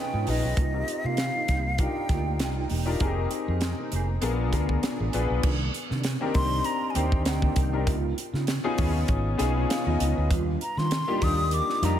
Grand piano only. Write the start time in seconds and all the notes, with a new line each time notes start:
Already playing: C#4 D#4 F4 G#4 B4
0.27 C#4 D#4 F4 G#4 B4
0.73 C4 D#4 F4 G4 A#4
1.79 D4 D#4 F4 G4 A#4
2.85 D4 D#4 F4 G4 A#4
3.00 C4 D#4 G4 G#4 A#4
4.21 B3 D4 F4 G#4 A#4
4.52 B3 D4 F4 G#4 A#4
5.13 B3 D4 F4 G#4 B4
6.21 C4 D4 D#4 G4 A#4
6.95 C4 D4 D#4 G4 C5
7.73 C4 D4 D#4 G4 A#4
8.64 B3 C#4 D#4 F4 G#4
9.38 B3 C#4 D#4 F4 G#4
9.70 F5
9.86 D#5
10.16 B4
11.07 A#3 D4 D#4 F4 G4
11.82 A#3 D4 D#4 F4 G4